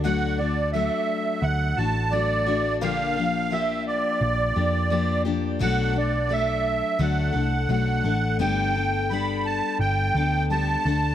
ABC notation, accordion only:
X:1
M:4/4
L:1/8
Q:1/4=86
K:G
V:1 name="Accordion"
f d e2 f a d2 | =f2 e d4 z | f d e2 f2 f2 | g2 b a g2 a2 |]